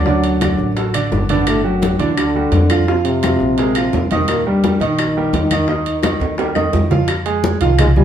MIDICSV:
0, 0, Header, 1, 5, 480
1, 0, Start_track
1, 0, Key_signature, -3, "major"
1, 0, Tempo, 351083
1, 89, Time_signature, 4, 2, 24, 8
1, 10996, End_track
2, 0, Start_track
2, 0, Title_t, "Grand piano"
2, 0, Program_c, 0, 0
2, 90, Note_on_c, 0, 50, 77
2, 93, Note_on_c, 0, 62, 76
2, 95, Note_on_c, 0, 74, 78
2, 484, Note_off_c, 0, 50, 0
2, 486, Note_off_c, 0, 62, 0
2, 487, Note_off_c, 0, 74, 0
2, 564, Note_on_c, 0, 50, 67
2, 567, Note_on_c, 0, 62, 64
2, 574, Note_on_c, 0, 74, 63
2, 961, Note_off_c, 0, 50, 0
2, 963, Note_off_c, 0, 62, 0
2, 967, Note_off_c, 0, 74, 0
2, 1051, Note_on_c, 0, 54, 63
2, 1059, Note_on_c, 0, 66, 64
2, 1060, Note_on_c, 0, 69, 63
2, 1248, Note_off_c, 0, 54, 0
2, 1253, Note_off_c, 0, 66, 0
2, 1253, Note_off_c, 0, 69, 0
2, 1285, Note_on_c, 0, 50, 73
2, 1291, Note_on_c, 0, 62, 78
2, 1293, Note_on_c, 0, 74, 80
2, 1682, Note_off_c, 0, 50, 0
2, 1686, Note_off_c, 0, 62, 0
2, 1687, Note_off_c, 0, 74, 0
2, 1773, Note_on_c, 0, 50, 86
2, 1778, Note_on_c, 0, 74, 88
2, 1780, Note_on_c, 0, 62, 81
2, 2167, Note_off_c, 0, 50, 0
2, 2170, Note_off_c, 0, 74, 0
2, 2172, Note_off_c, 0, 62, 0
2, 2242, Note_on_c, 0, 54, 69
2, 2245, Note_on_c, 0, 66, 72
2, 2248, Note_on_c, 0, 67, 70
2, 2444, Note_off_c, 0, 54, 0
2, 2446, Note_off_c, 0, 66, 0
2, 2447, Note_off_c, 0, 67, 0
2, 2489, Note_on_c, 0, 54, 53
2, 2490, Note_on_c, 0, 66, 57
2, 2497, Note_on_c, 0, 67, 59
2, 2688, Note_off_c, 0, 54, 0
2, 2689, Note_off_c, 0, 66, 0
2, 2693, Note_off_c, 0, 67, 0
2, 2724, Note_on_c, 0, 50, 72
2, 2732, Note_on_c, 0, 62, 80
2, 2735, Note_on_c, 0, 74, 78
2, 3122, Note_off_c, 0, 50, 0
2, 3127, Note_off_c, 0, 62, 0
2, 3129, Note_off_c, 0, 74, 0
2, 3220, Note_on_c, 0, 55, 63
2, 3220, Note_on_c, 0, 66, 69
2, 3225, Note_on_c, 0, 67, 62
2, 3612, Note_off_c, 0, 55, 0
2, 3612, Note_off_c, 0, 66, 0
2, 3615, Note_off_c, 0, 67, 0
2, 3689, Note_on_c, 0, 53, 86
2, 3700, Note_on_c, 0, 65, 77
2, 3703, Note_on_c, 0, 77, 84
2, 3889, Note_off_c, 0, 53, 0
2, 3895, Note_off_c, 0, 65, 0
2, 3897, Note_off_c, 0, 77, 0
2, 3930, Note_on_c, 0, 53, 74
2, 3940, Note_on_c, 0, 65, 76
2, 3940, Note_on_c, 0, 77, 77
2, 4326, Note_off_c, 0, 53, 0
2, 4332, Note_off_c, 0, 65, 0
2, 4332, Note_off_c, 0, 77, 0
2, 4411, Note_on_c, 0, 65, 69
2, 4414, Note_on_c, 0, 53, 70
2, 4423, Note_on_c, 0, 77, 62
2, 4807, Note_off_c, 0, 65, 0
2, 4808, Note_off_c, 0, 53, 0
2, 4813, Note_off_c, 0, 77, 0
2, 4899, Note_on_c, 0, 56, 73
2, 4903, Note_on_c, 0, 70, 70
2, 4906, Note_on_c, 0, 68, 68
2, 5095, Note_off_c, 0, 56, 0
2, 5097, Note_off_c, 0, 70, 0
2, 5099, Note_off_c, 0, 68, 0
2, 5146, Note_on_c, 0, 53, 77
2, 5150, Note_on_c, 0, 77, 79
2, 5154, Note_on_c, 0, 65, 74
2, 5536, Note_off_c, 0, 53, 0
2, 5538, Note_off_c, 0, 77, 0
2, 5540, Note_off_c, 0, 65, 0
2, 5624, Note_on_c, 0, 51, 87
2, 5632, Note_on_c, 0, 63, 77
2, 5638, Note_on_c, 0, 75, 93
2, 6014, Note_off_c, 0, 51, 0
2, 6019, Note_off_c, 0, 63, 0
2, 6022, Note_off_c, 0, 75, 0
2, 6106, Note_on_c, 0, 55, 72
2, 6107, Note_on_c, 0, 67, 69
2, 6110, Note_on_c, 0, 70, 67
2, 6299, Note_off_c, 0, 55, 0
2, 6299, Note_off_c, 0, 67, 0
2, 6301, Note_off_c, 0, 70, 0
2, 6341, Note_on_c, 0, 55, 68
2, 6344, Note_on_c, 0, 67, 57
2, 6344, Note_on_c, 0, 70, 58
2, 6535, Note_off_c, 0, 55, 0
2, 6537, Note_off_c, 0, 67, 0
2, 6537, Note_off_c, 0, 70, 0
2, 6573, Note_on_c, 0, 63, 87
2, 6578, Note_on_c, 0, 51, 82
2, 6583, Note_on_c, 0, 75, 87
2, 6967, Note_off_c, 0, 63, 0
2, 6970, Note_off_c, 0, 51, 0
2, 6973, Note_off_c, 0, 75, 0
2, 7067, Note_on_c, 0, 55, 66
2, 7074, Note_on_c, 0, 67, 75
2, 7078, Note_on_c, 0, 70, 70
2, 7455, Note_off_c, 0, 55, 0
2, 7459, Note_off_c, 0, 67, 0
2, 7461, Note_off_c, 0, 70, 0
2, 7545, Note_on_c, 0, 51, 76
2, 7549, Note_on_c, 0, 63, 85
2, 7554, Note_on_c, 0, 75, 88
2, 7737, Note_off_c, 0, 51, 0
2, 7739, Note_off_c, 0, 63, 0
2, 7742, Note_off_c, 0, 75, 0
2, 7775, Note_on_c, 0, 51, 76
2, 7781, Note_on_c, 0, 75, 78
2, 7786, Note_on_c, 0, 63, 76
2, 8168, Note_off_c, 0, 51, 0
2, 8171, Note_off_c, 0, 75, 0
2, 8174, Note_off_c, 0, 63, 0
2, 8251, Note_on_c, 0, 51, 68
2, 8261, Note_on_c, 0, 63, 71
2, 8262, Note_on_c, 0, 75, 67
2, 8645, Note_off_c, 0, 51, 0
2, 8651, Note_off_c, 0, 63, 0
2, 8651, Note_off_c, 0, 75, 0
2, 8723, Note_on_c, 0, 55, 64
2, 8731, Note_on_c, 0, 70, 71
2, 8733, Note_on_c, 0, 67, 67
2, 8924, Note_off_c, 0, 55, 0
2, 8928, Note_off_c, 0, 70, 0
2, 8929, Note_off_c, 0, 67, 0
2, 8955, Note_on_c, 0, 51, 72
2, 8965, Note_on_c, 0, 63, 76
2, 8967, Note_on_c, 0, 75, 78
2, 9355, Note_off_c, 0, 51, 0
2, 9361, Note_off_c, 0, 63, 0
2, 9362, Note_off_c, 0, 75, 0
2, 9441, Note_on_c, 0, 53, 83
2, 9450, Note_on_c, 0, 65, 82
2, 9454, Note_on_c, 0, 77, 86
2, 9642, Note_off_c, 0, 53, 0
2, 9647, Note_off_c, 0, 65, 0
2, 9649, Note_off_c, 0, 77, 0
2, 9923, Note_on_c, 0, 56, 75
2, 9925, Note_on_c, 0, 68, 74
2, 9927, Note_on_c, 0, 80, 74
2, 10318, Note_off_c, 0, 56, 0
2, 10320, Note_off_c, 0, 68, 0
2, 10321, Note_off_c, 0, 80, 0
2, 10405, Note_on_c, 0, 53, 86
2, 10406, Note_on_c, 0, 65, 82
2, 10409, Note_on_c, 0, 77, 80
2, 10799, Note_off_c, 0, 53, 0
2, 10800, Note_off_c, 0, 65, 0
2, 10802, Note_off_c, 0, 77, 0
2, 10892, Note_on_c, 0, 53, 76
2, 10894, Note_on_c, 0, 65, 66
2, 10898, Note_on_c, 0, 80, 76
2, 10996, Note_off_c, 0, 53, 0
2, 10996, Note_off_c, 0, 65, 0
2, 10996, Note_off_c, 0, 80, 0
2, 10996, End_track
3, 0, Start_track
3, 0, Title_t, "Trombone section"
3, 0, Program_c, 1, 61
3, 0, Note_on_c, 1, 42, 77
3, 0, Note_on_c, 1, 54, 103
3, 1350, Note_off_c, 1, 54, 0
3, 1363, Note_off_c, 1, 42, 0
3, 1788, Note_on_c, 1, 59, 92
3, 1809, Note_on_c, 1, 47, 65
3, 2005, Note_off_c, 1, 59, 0
3, 2013, Note_on_c, 1, 57, 91
3, 2016, Note_off_c, 1, 47, 0
3, 2035, Note_on_c, 1, 45, 68
3, 2250, Note_on_c, 1, 54, 88
3, 2254, Note_off_c, 1, 57, 0
3, 2265, Note_off_c, 1, 45, 0
3, 2270, Note_on_c, 1, 42, 73
3, 2699, Note_off_c, 1, 54, 0
3, 2710, Note_off_c, 1, 42, 0
3, 2714, Note_on_c, 1, 52, 84
3, 2735, Note_on_c, 1, 64, 70
3, 2943, Note_on_c, 1, 50, 95
3, 2964, Note_off_c, 1, 52, 0
3, 2968, Note_on_c, 1, 62, 70
3, 2975, Note_off_c, 1, 64, 0
3, 3865, Note_off_c, 1, 50, 0
3, 3878, Note_off_c, 1, 62, 0
3, 3922, Note_on_c, 1, 48, 81
3, 3946, Note_on_c, 1, 60, 64
3, 4033, Note_off_c, 1, 48, 0
3, 4052, Note_off_c, 1, 60, 0
3, 4171, Note_on_c, 1, 48, 96
3, 4203, Note_on_c, 1, 60, 73
3, 5559, Note_off_c, 1, 48, 0
3, 5574, Note_off_c, 1, 60, 0
3, 5635, Note_on_c, 1, 60, 89
3, 5657, Note_on_c, 1, 48, 75
3, 5857, Note_on_c, 1, 58, 92
3, 5865, Note_off_c, 1, 60, 0
3, 5876, Note_off_c, 1, 48, 0
3, 5876, Note_on_c, 1, 46, 74
3, 6080, Note_off_c, 1, 58, 0
3, 6089, Note_off_c, 1, 46, 0
3, 6100, Note_on_c, 1, 55, 88
3, 6133, Note_on_c, 1, 43, 72
3, 6544, Note_off_c, 1, 55, 0
3, 6561, Note_off_c, 1, 43, 0
3, 6584, Note_on_c, 1, 51, 84
3, 6606, Note_on_c, 1, 63, 75
3, 9216, Note_off_c, 1, 51, 0
3, 9227, Note_off_c, 1, 63, 0
3, 10423, Note_on_c, 1, 51, 82
3, 10434, Note_on_c, 1, 63, 66
3, 10527, Note_off_c, 1, 51, 0
3, 10536, Note_off_c, 1, 63, 0
3, 10647, Note_on_c, 1, 56, 110
3, 10664, Note_on_c, 1, 44, 90
3, 10755, Note_off_c, 1, 56, 0
3, 10768, Note_off_c, 1, 44, 0
3, 10895, Note_on_c, 1, 55, 105
3, 10902, Note_on_c, 1, 43, 83
3, 10996, Note_off_c, 1, 43, 0
3, 10996, Note_off_c, 1, 55, 0
3, 10996, End_track
4, 0, Start_track
4, 0, Title_t, "Upright bass"
4, 0, Program_c, 2, 32
4, 0, Note_on_c, 2, 38, 94
4, 732, Note_off_c, 2, 38, 0
4, 795, Note_on_c, 2, 33, 89
4, 1473, Note_off_c, 2, 33, 0
4, 1527, Note_on_c, 2, 31, 85
4, 2653, Note_off_c, 2, 31, 0
4, 2718, Note_on_c, 2, 38, 91
4, 3396, Note_off_c, 2, 38, 0
4, 3436, Note_on_c, 2, 41, 84
4, 4567, Note_off_c, 2, 41, 0
4, 4645, Note_on_c, 2, 34, 95
4, 5319, Note_off_c, 2, 34, 0
4, 5367, Note_on_c, 2, 39, 89
4, 6492, Note_off_c, 2, 39, 0
4, 6560, Note_on_c, 2, 34, 94
4, 7236, Note_off_c, 2, 34, 0
4, 7285, Note_on_c, 2, 39, 96
4, 8409, Note_off_c, 2, 39, 0
4, 8478, Note_on_c, 2, 39, 97
4, 9153, Note_off_c, 2, 39, 0
4, 9209, Note_on_c, 2, 41, 84
4, 10329, Note_off_c, 2, 41, 0
4, 10400, Note_on_c, 2, 36, 100
4, 10996, Note_off_c, 2, 36, 0
4, 10996, End_track
5, 0, Start_track
5, 0, Title_t, "Drums"
5, 80, Note_on_c, 9, 60, 63
5, 93, Note_on_c, 9, 63, 35
5, 216, Note_off_c, 9, 60, 0
5, 229, Note_off_c, 9, 63, 0
5, 323, Note_on_c, 9, 65, 71
5, 330, Note_on_c, 9, 63, 36
5, 460, Note_off_c, 9, 65, 0
5, 466, Note_off_c, 9, 63, 0
5, 563, Note_on_c, 9, 65, 88
5, 563, Note_on_c, 9, 66, 63
5, 569, Note_on_c, 9, 60, 60
5, 571, Note_on_c, 9, 63, 88
5, 573, Note_on_c, 9, 75, 58
5, 700, Note_off_c, 9, 65, 0
5, 700, Note_off_c, 9, 66, 0
5, 706, Note_off_c, 9, 60, 0
5, 708, Note_off_c, 9, 63, 0
5, 710, Note_off_c, 9, 75, 0
5, 812, Note_on_c, 9, 60, 33
5, 819, Note_on_c, 9, 63, 31
5, 949, Note_off_c, 9, 60, 0
5, 956, Note_off_c, 9, 63, 0
5, 1047, Note_on_c, 9, 60, 70
5, 1051, Note_on_c, 9, 65, 68
5, 1057, Note_on_c, 9, 63, 32
5, 1183, Note_off_c, 9, 60, 0
5, 1188, Note_off_c, 9, 65, 0
5, 1193, Note_off_c, 9, 63, 0
5, 1285, Note_on_c, 9, 75, 68
5, 1291, Note_on_c, 9, 65, 94
5, 1300, Note_on_c, 9, 60, 29
5, 1300, Note_on_c, 9, 63, 31
5, 1422, Note_off_c, 9, 75, 0
5, 1428, Note_off_c, 9, 65, 0
5, 1437, Note_off_c, 9, 60, 0
5, 1437, Note_off_c, 9, 63, 0
5, 1530, Note_on_c, 9, 66, 70
5, 1531, Note_on_c, 9, 60, 31
5, 1531, Note_on_c, 9, 61, 81
5, 1540, Note_on_c, 9, 63, 74
5, 1667, Note_off_c, 9, 66, 0
5, 1668, Note_off_c, 9, 60, 0
5, 1668, Note_off_c, 9, 61, 0
5, 1677, Note_off_c, 9, 63, 0
5, 1765, Note_on_c, 9, 60, 31
5, 1768, Note_on_c, 9, 65, 74
5, 1773, Note_on_c, 9, 63, 74
5, 1902, Note_off_c, 9, 60, 0
5, 1904, Note_off_c, 9, 65, 0
5, 1909, Note_off_c, 9, 63, 0
5, 2008, Note_on_c, 9, 65, 99
5, 2009, Note_on_c, 9, 75, 66
5, 2013, Note_on_c, 9, 60, 66
5, 2144, Note_off_c, 9, 65, 0
5, 2146, Note_off_c, 9, 75, 0
5, 2150, Note_off_c, 9, 60, 0
5, 2268, Note_on_c, 9, 63, 33
5, 2405, Note_off_c, 9, 63, 0
5, 2487, Note_on_c, 9, 60, 62
5, 2495, Note_on_c, 9, 65, 70
5, 2495, Note_on_c, 9, 66, 52
5, 2500, Note_on_c, 9, 63, 94
5, 2624, Note_off_c, 9, 60, 0
5, 2632, Note_off_c, 9, 65, 0
5, 2632, Note_off_c, 9, 66, 0
5, 2636, Note_off_c, 9, 63, 0
5, 2728, Note_on_c, 9, 65, 62
5, 2734, Note_on_c, 9, 60, 33
5, 2751, Note_on_c, 9, 63, 34
5, 2865, Note_off_c, 9, 65, 0
5, 2871, Note_off_c, 9, 60, 0
5, 2888, Note_off_c, 9, 63, 0
5, 2973, Note_on_c, 9, 75, 64
5, 2974, Note_on_c, 9, 65, 96
5, 2977, Note_on_c, 9, 60, 63
5, 2994, Note_on_c, 9, 63, 31
5, 3110, Note_off_c, 9, 75, 0
5, 3111, Note_off_c, 9, 65, 0
5, 3114, Note_off_c, 9, 60, 0
5, 3131, Note_off_c, 9, 63, 0
5, 3214, Note_on_c, 9, 60, 34
5, 3235, Note_on_c, 9, 63, 35
5, 3351, Note_off_c, 9, 60, 0
5, 3372, Note_off_c, 9, 63, 0
5, 3444, Note_on_c, 9, 65, 61
5, 3444, Note_on_c, 9, 66, 74
5, 3452, Note_on_c, 9, 60, 32
5, 3452, Note_on_c, 9, 61, 78
5, 3473, Note_on_c, 9, 63, 69
5, 3580, Note_off_c, 9, 65, 0
5, 3580, Note_off_c, 9, 66, 0
5, 3589, Note_off_c, 9, 60, 0
5, 3589, Note_off_c, 9, 61, 0
5, 3610, Note_off_c, 9, 63, 0
5, 3689, Note_on_c, 9, 65, 92
5, 3691, Note_on_c, 9, 75, 68
5, 3696, Note_on_c, 9, 60, 31
5, 3704, Note_on_c, 9, 63, 75
5, 3825, Note_off_c, 9, 65, 0
5, 3828, Note_off_c, 9, 75, 0
5, 3833, Note_off_c, 9, 60, 0
5, 3841, Note_off_c, 9, 63, 0
5, 3942, Note_on_c, 9, 60, 71
5, 4078, Note_off_c, 9, 60, 0
5, 4168, Note_on_c, 9, 65, 75
5, 4187, Note_on_c, 9, 63, 32
5, 4305, Note_off_c, 9, 65, 0
5, 4324, Note_off_c, 9, 63, 0
5, 4414, Note_on_c, 9, 65, 87
5, 4414, Note_on_c, 9, 66, 56
5, 4424, Note_on_c, 9, 75, 56
5, 4426, Note_on_c, 9, 63, 97
5, 4427, Note_on_c, 9, 60, 58
5, 4551, Note_off_c, 9, 65, 0
5, 4551, Note_off_c, 9, 66, 0
5, 4560, Note_off_c, 9, 75, 0
5, 4563, Note_off_c, 9, 63, 0
5, 4564, Note_off_c, 9, 60, 0
5, 4658, Note_on_c, 9, 63, 31
5, 4667, Note_on_c, 9, 60, 31
5, 4795, Note_off_c, 9, 63, 0
5, 4804, Note_off_c, 9, 60, 0
5, 4891, Note_on_c, 9, 65, 73
5, 4908, Note_on_c, 9, 63, 36
5, 4912, Note_on_c, 9, 60, 61
5, 5028, Note_off_c, 9, 65, 0
5, 5044, Note_off_c, 9, 63, 0
5, 5049, Note_off_c, 9, 60, 0
5, 5129, Note_on_c, 9, 65, 93
5, 5137, Note_on_c, 9, 63, 33
5, 5142, Note_on_c, 9, 75, 62
5, 5152, Note_on_c, 9, 60, 28
5, 5266, Note_off_c, 9, 65, 0
5, 5273, Note_off_c, 9, 63, 0
5, 5279, Note_off_c, 9, 75, 0
5, 5288, Note_off_c, 9, 60, 0
5, 5376, Note_on_c, 9, 66, 78
5, 5383, Note_on_c, 9, 63, 82
5, 5390, Note_on_c, 9, 60, 35
5, 5390, Note_on_c, 9, 61, 80
5, 5512, Note_off_c, 9, 66, 0
5, 5519, Note_off_c, 9, 63, 0
5, 5527, Note_off_c, 9, 60, 0
5, 5527, Note_off_c, 9, 61, 0
5, 5617, Note_on_c, 9, 65, 67
5, 5627, Note_on_c, 9, 60, 31
5, 5630, Note_on_c, 9, 63, 79
5, 5753, Note_off_c, 9, 65, 0
5, 5763, Note_off_c, 9, 60, 0
5, 5767, Note_off_c, 9, 63, 0
5, 5851, Note_on_c, 9, 65, 96
5, 5858, Note_on_c, 9, 60, 68
5, 5861, Note_on_c, 9, 75, 61
5, 5864, Note_on_c, 9, 63, 31
5, 5988, Note_off_c, 9, 65, 0
5, 5995, Note_off_c, 9, 60, 0
5, 5997, Note_off_c, 9, 75, 0
5, 6000, Note_off_c, 9, 63, 0
5, 6098, Note_on_c, 9, 63, 32
5, 6235, Note_off_c, 9, 63, 0
5, 6340, Note_on_c, 9, 65, 65
5, 6340, Note_on_c, 9, 66, 57
5, 6342, Note_on_c, 9, 60, 58
5, 6342, Note_on_c, 9, 63, 89
5, 6476, Note_off_c, 9, 65, 0
5, 6476, Note_off_c, 9, 66, 0
5, 6479, Note_off_c, 9, 60, 0
5, 6479, Note_off_c, 9, 63, 0
5, 6578, Note_on_c, 9, 63, 33
5, 6582, Note_on_c, 9, 65, 61
5, 6715, Note_off_c, 9, 63, 0
5, 6719, Note_off_c, 9, 65, 0
5, 6813, Note_on_c, 9, 63, 32
5, 6816, Note_on_c, 9, 65, 92
5, 6821, Note_on_c, 9, 75, 71
5, 6826, Note_on_c, 9, 60, 64
5, 6950, Note_off_c, 9, 63, 0
5, 6953, Note_off_c, 9, 65, 0
5, 6957, Note_off_c, 9, 75, 0
5, 6962, Note_off_c, 9, 60, 0
5, 7054, Note_on_c, 9, 63, 36
5, 7065, Note_on_c, 9, 60, 30
5, 7191, Note_off_c, 9, 63, 0
5, 7201, Note_off_c, 9, 60, 0
5, 7291, Note_on_c, 9, 63, 76
5, 7294, Note_on_c, 9, 60, 36
5, 7294, Note_on_c, 9, 61, 81
5, 7298, Note_on_c, 9, 65, 67
5, 7298, Note_on_c, 9, 66, 70
5, 7427, Note_off_c, 9, 63, 0
5, 7430, Note_off_c, 9, 60, 0
5, 7430, Note_off_c, 9, 61, 0
5, 7435, Note_off_c, 9, 65, 0
5, 7435, Note_off_c, 9, 66, 0
5, 7530, Note_on_c, 9, 60, 32
5, 7531, Note_on_c, 9, 65, 93
5, 7534, Note_on_c, 9, 63, 81
5, 7536, Note_on_c, 9, 75, 70
5, 7667, Note_off_c, 9, 60, 0
5, 7668, Note_off_c, 9, 65, 0
5, 7671, Note_off_c, 9, 63, 0
5, 7672, Note_off_c, 9, 75, 0
5, 7764, Note_on_c, 9, 60, 63
5, 7773, Note_on_c, 9, 63, 34
5, 7901, Note_off_c, 9, 60, 0
5, 7910, Note_off_c, 9, 63, 0
5, 8015, Note_on_c, 9, 65, 72
5, 8020, Note_on_c, 9, 63, 33
5, 8151, Note_off_c, 9, 65, 0
5, 8157, Note_off_c, 9, 63, 0
5, 8240, Note_on_c, 9, 60, 61
5, 8248, Note_on_c, 9, 75, 57
5, 8250, Note_on_c, 9, 65, 92
5, 8250, Note_on_c, 9, 66, 57
5, 8255, Note_on_c, 9, 63, 98
5, 8377, Note_off_c, 9, 60, 0
5, 8385, Note_off_c, 9, 75, 0
5, 8387, Note_off_c, 9, 65, 0
5, 8387, Note_off_c, 9, 66, 0
5, 8392, Note_off_c, 9, 63, 0
5, 8476, Note_on_c, 9, 60, 33
5, 8496, Note_on_c, 9, 65, 80
5, 8497, Note_on_c, 9, 63, 33
5, 8612, Note_off_c, 9, 60, 0
5, 8633, Note_off_c, 9, 63, 0
5, 8633, Note_off_c, 9, 65, 0
5, 8722, Note_on_c, 9, 60, 69
5, 8733, Note_on_c, 9, 63, 34
5, 8737, Note_on_c, 9, 65, 89
5, 8859, Note_off_c, 9, 60, 0
5, 8870, Note_off_c, 9, 63, 0
5, 8874, Note_off_c, 9, 65, 0
5, 8958, Note_on_c, 9, 60, 31
5, 8959, Note_on_c, 9, 75, 62
5, 8968, Note_on_c, 9, 65, 80
5, 8974, Note_on_c, 9, 63, 75
5, 9095, Note_off_c, 9, 60, 0
5, 9095, Note_off_c, 9, 75, 0
5, 9105, Note_off_c, 9, 65, 0
5, 9111, Note_off_c, 9, 63, 0
5, 9201, Note_on_c, 9, 60, 35
5, 9201, Note_on_c, 9, 61, 77
5, 9206, Note_on_c, 9, 66, 74
5, 9338, Note_off_c, 9, 60, 0
5, 9338, Note_off_c, 9, 61, 0
5, 9342, Note_off_c, 9, 66, 0
5, 9434, Note_on_c, 9, 60, 33
5, 9446, Note_on_c, 9, 66, 72
5, 9447, Note_on_c, 9, 64, 86
5, 9571, Note_off_c, 9, 60, 0
5, 9583, Note_off_c, 9, 66, 0
5, 9584, Note_off_c, 9, 64, 0
5, 9677, Note_on_c, 9, 60, 73
5, 9678, Note_on_c, 9, 65, 92
5, 9687, Note_on_c, 9, 75, 65
5, 9689, Note_on_c, 9, 63, 35
5, 9813, Note_off_c, 9, 60, 0
5, 9815, Note_off_c, 9, 65, 0
5, 9824, Note_off_c, 9, 75, 0
5, 9826, Note_off_c, 9, 63, 0
5, 9924, Note_on_c, 9, 65, 74
5, 9928, Note_on_c, 9, 63, 33
5, 10060, Note_off_c, 9, 65, 0
5, 10064, Note_off_c, 9, 63, 0
5, 10166, Note_on_c, 9, 60, 60
5, 10169, Note_on_c, 9, 63, 106
5, 10303, Note_off_c, 9, 60, 0
5, 10305, Note_off_c, 9, 63, 0
5, 10401, Note_on_c, 9, 65, 70
5, 10412, Note_on_c, 9, 63, 35
5, 10538, Note_off_c, 9, 65, 0
5, 10548, Note_off_c, 9, 63, 0
5, 10643, Note_on_c, 9, 75, 70
5, 10646, Note_on_c, 9, 60, 75
5, 10646, Note_on_c, 9, 65, 96
5, 10650, Note_on_c, 9, 63, 34
5, 10650, Note_on_c, 9, 64, 85
5, 10779, Note_off_c, 9, 75, 0
5, 10782, Note_off_c, 9, 60, 0
5, 10783, Note_off_c, 9, 65, 0
5, 10787, Note_off_c, 9, 63, 0
5, 10787, Note_off_c, 9, 64, 0
5, 10885, Note_on_c, 9, 63, 34
5, 10885, Note_on_c, 9, 64, 73
5, 10996, Note_off_c, 9, 63, 0
5, 10996, Note_off_c, 9, 64, 0
5, 10996, End_track
0, 0, End_of_file